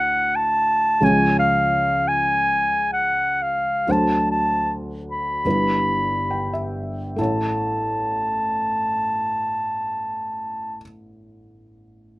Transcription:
0.00 0.97 D2 soft
0.00 0.97 D3 soft
0.00 0.96 F#3 soft
0.00 0.97 E4 soft
0.00 0.98 D5 soft
0.00 0.37 F#5 medium
0.36 1.06 A5 medium
1.01 3.84 C#2 soft
1.01 3.84 C#3 soft
1.01 3.84 F3 soft
1.01 3.84 G#3 soft
1.01 3.85 C#5 soft
1.01 1.38 G#5 medium
1.39 2.09 F5 medium
2.08 2.90 G#5 medium
2.93 3.43 F#5 medium
3.42 3.93 F5 medium
3.87 5.41 D2 soft
3.87 5.41 D3 soft
3.87 5.42 F#3 soft
3.87 5.42 D4 soft
3.87 5.43 C5 soft
3.91 4.28 A5 medium
4.31 4.73 A5 medium
5.11 6.73 B5 medium
5.44 7.15 G1 soft
5.44 7.14 G2 soft
5.44 7.15 G3 soft
5.44 7.15 E4 soft
5.44 7.16 B4 soft
6.30 6.50 G5 soft
6.53 7.15 E5 soft
7.16 10.80 A1 soft
7.16 10.77 A3 soft
7.16 10.79 E4 soft
7.16 10.79 A5 medium
7.21 10.82 C#5 soft

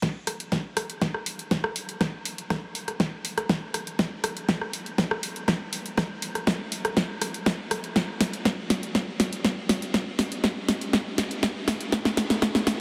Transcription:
0.02 kick loud
0.02 snare soft
0.02 closed hi-hat soft
0.27 cross-stick soft
0.27 open hi-hat loud
0.40 closed hi-hat soft
0.52 kick loud
0.52 snare soft
0.52 closed hi-hat soft
0.77 cross-stick medium
0.77 open hi-hat loud
0.90 closed hi-hat soft
1.01 kick loud
1.01 snare soft
1.01 closed hi-hat soft
1.14 cross-stick soft
1.26 open hi-hat loud
1.39 closed hi-hat soft
1.51 kick loud
1.51 snare soft
1.51 closed hi-hat soft
1.64 cross-stick medium
1.76 open hi-hat loud
1.89 closed hi-hat soft
2.01 kick loud
2.01 cross-stick soft
2.01 snare medium
2.01 closed hi-hat soft
2.25 open hi-hat loud
2.38 closed hi-hat soft
2.50 kick loud
2.50 cross-stick medium
2.50 snare medium
2.50 closed hi-hat soft
2.75 open hi-hat loud
2.88 cross-stick soft
2.88 closed hi-hat soft
3.00 kick loud
3.00 snare medium
3.00 closed hi-hat soft
3.25 open hi-hat loud
3.38 cross-stick medium
3.38 closed hi-hat soft
3.49 kick loud
3.49 snare medium
3.49 closed hi-hat soft
3.74 cross-stick soft
3.74 open hi-hat loud
3.87 closed hi-hat soft
3.99 kick loud
3.99 snare medium
3.99 closed hi-hat soft
4.24 cross-stick medium
4.24 open hi-hat loud
4.37 closed hi-hat soft
4.49 kick loud
4.49 snare medium
4.49 closed hi-hat soft
4.61 cross-stick medium
4.73 open hi-hat loud
4.86 closed hi-hat soft
4.98 kick loud
4.98 snare medium
4.98 closed hi-hat soft
5.11 cross-stick medium
5.23 open hi-hat loud
5.36 closed hi-hat soft
5.48 kick loud
5.48 cross-stick soft
5.48 snare medium
5.48 closed hi-hat soft
5.73 open hi-hat loud
5.86 closed hi-hat soft
5.97 kick loud
5.97 cross-stick medium
5.97 snare medium
5.97 closed hi-hat soft
6.22 open hi-hat loud
6.35 cross-stick medium
6.35 closed hi-hat soft
6.47 kick loud
6.47 snare medium
6.47 closed hi-hat soft
6.72 open hi-hat loud
6.85 cross-stick medium
6.85 closed hi-hat soft
6.97 kick loud
6.97 snare medium
6.97 closed hi-hat soft
7.22 cross-stick medium
7.22 open hi-hat loud
7.34 closed hi-hat soft
7.46 kick loud
7.46 snare medium
7.46 closed hi-hat soft
7.71 cross-stick medium
7.71 open hi-hat loud
7.84 closed hi-hat soft
7.96 kick loud
7.96 snare medium
7.96 closed hi-hat soft
8.21 snare medium
8.21 open hi-hat loud
8.33 closed hi-hat soft
8.45 kick loud
8.45 snare medium
8.45 closed hi-hat soft
8.70 snare medium
8.70 open hi-hat loud
8.83 closed hi-hat soft
8.95 kick loud
8.95 snare medium
8.95 closed hi-hat soft
9.20 snare medium
9.20 open hi-hat loud
9.33 closed hi-hat soft
9.44 kick loud
9.44 snare medium
9.44 closed hi-hat soft
9.69 snare medium
9.69 open hi-hat loud
9.82 closed hi-hat soft
9.94 kick loud
9.94 snare medium
9.94 closed hi-hat soft
10.19 snare medium
10.19 open hi-hat loud
10.32 closed hi-hat soft
10.44 kick loud
10.44 snare medium
10.44 closed hi-hat soft
10.69 snare medium
10.69 open hi-hat loud
10.81 closed hi-hat soft
10.93 kick loud
10.93 snare medium
10.93 closed hi-hat soft
11.18 snare medium
11.18 open hi-hat loud
11.31 closed hi-hat soft
11.43 kick loud
11.43 snare medium
11.43 closed hi-hat soft
11.68 snare medium
11.68 open hi-hat loud
11.81 closed hi-hat soft
11.92 kick loud
11.92 snare medium
11.92 closed hi-hat soft
12.05 snare medium
12.17 snare medium
12.17 open hi-hat loud
12.30 snare medium
12.30 closed hi-hat soft
12.42 kick loud
12.42 snare medium
12.42 closed hi-hat soft
12.55 snare medium
12.67 snare medium
12.67 open hi-hat loud

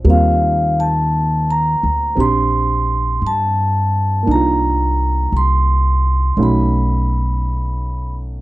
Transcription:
0.04 1.78 D#2 medium
0.04 4.25 G3 soft
0.04 4.21 A#3 soft
0.04 2.14 C4 soft
0.10 4.28 F4 medium
0.10 0.80 F5 medium
0.80 1.50 A5 medium
1.51 2.20 A#5 medium
1.83 2.14 D2 medium
2.15 3.17 A#1 medium
2.15 4.26 C4 soft
2.15 4.25 D4 soft
2.15 4.27 G4 soft
2.20 3.26 C6 medium
3.22 4.22 G2 medium
3.27 4.32 A5 medium
4.23 6.35 A#3 soft
4.23 6.37 D4 soft
4.27 5.28 C2 medium
4.27 6.37 D#4 soft
4.32 6.40 F4 soft
4.32 5.37 A#5 medium
5.32 6.33 C2 medium
5.37 6.42 C6 medium
6.37 8.41 B1 medium
6.37 8.41 A3 medium
6.37 8.41 C#4 soft
6.37 8.41 D#4 soft
6.37 8.41 F#4 medium
6.43 8.14 B5 medium

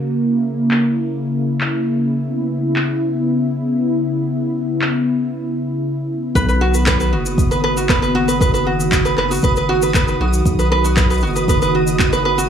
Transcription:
0.00 6.31 C#3 medium
0.00 2.21 A#3 medium
0.00 0.16 F#4 medium
0.20 6.31 E4 medium
0.71 clap medium
1.61 clap medium
2.25 6.31 B3 medium
2.76 clap medium
4.81 clap medium
6.35 7.14 B1 loud
6.35 12.49 D#3 medium
6.35 10.42 B3 medium
6.35 12.49 F#4 medium
6.35 6.47 B4 medium
6.35 12.49 D#6 medium
6.35 kick loud
6.35 shaker medium
6.49 6.60 B4 medium
6.49 shaker soft
6.61 6.73 F#4 medium
6.74 6.86 B4 medium
6.74 shaker medium
6.86 6.99 B4 medium
6.86 kick loud
6.86 clap loud
6.86 shaker medium
7.00 7.11 B4 medium
7.00 shaker soft
7.13 9.14 F#1 loud
7.13 7.50 F#4 medium
7.26 shaker medium
7.38 kick loud
7.38 shaker medium
7.51 7.62 B4 medium
7.51 shaker soft
7.64 7.75 B4 loud
7.77 7.88 F#4 medium
7.77 shaker medium
7.89 8.01 B4 medium
7.89 kick loud
7.89 clap medium
7.89 shaker soft
8.02 8.14 B4 medium
8.02 shaker soft
8.15 8.27 F#4 loud
8.28 8.39 B4 medium
8.28 shaker medium
8.41 8.53 B4 medium
8.41 kick loud
8.41 shaker medium
8.54 8.65 B4 medium
8.54 shaker soft
8.67 9.03 F#4 medium
8.80 shaker medium
8.92 kick loud
8.92 clap loud
8.92 shaker medium
9.05 9.16 B4 medium
9.05 shaker soft
9.17 9.39 F#1 loud
9.17 9.29 B4 medium
9.17 clap soft
9.31 9.42 F#4 medium
9.31 shaker medium
9.34 shaker medium
9.36 shaker soft
9.39 shaker soft
9.41 10.17 F#1 medium
9.41 9.55 B4 medium
9.41 kick loud
9.41 shaker soft
9.44 shaker medium
9.56 9.68 B4 medium
9.56 shaker soft
9.69 9.81 F#4 loud
9.82 9.94 B4 medium
9.82 shaker medium
9.94 10.07 B4 medium
9.94 kick loud
9.94 clap medium
9.94 shaker medium
10.08 10.19 B4 medium
10.08 shaker soft
10.20 10.42 B1 loud
10.20 10.57 F#4 medium
10.33 shaker medium
10.45 11.24 B1 loud
10.45 kick loud
10.45 shaker medium
10.59 10.70 B4 medium
10.59 shaker soft
10.72 10.83 B4 loud
10.84 10.96 F#4 loud
10.84 shaker medium
10.97 11.08 B4 medium
10.97 kick loud
10.97 clap loud
10.97 shaker medium
11.10 11.21 B4 medium
11.10 shaker soft
11.14 shaker soft
11.20 12.49 F#1 loud
11.20 11.35 F#4 medium
11.20 shaker soft
11.27 shaker soft
11.30 shaker soft
11.33 11.47 B4 medium
11.33 shaker soft
11.36 shaker medium
11.48 11.61 B4 medium
11.48 kick loud
11.48 shaker medium
11.62 11.73 B4 medium
11.62 shaker soft
11.75 12.11 F#4 medium
11.87 shaker medium
11.99 kick loud
11.99 clap medium
11.99 shaker medium
12.13 12.24 B4 medium
12.13 shaker soft
12.25 12.37 B4 loud
12.38 12.49 F#4 loud
12.38 shaker medium

